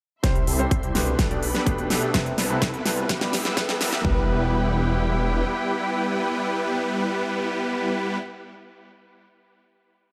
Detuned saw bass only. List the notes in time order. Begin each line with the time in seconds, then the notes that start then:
0.24 C2
0.47 C2
0.71 C2
0.95 C2
1.19 B1
1.43 B1
1.66 B1
1.78 B1
1.90 B1
2.14 C2
2.38 C2
2.62 C2
2.85 C2
3.09 E1
3.33 E1
3.57 E1
3.69 E1
3.81 E1
4.05 E1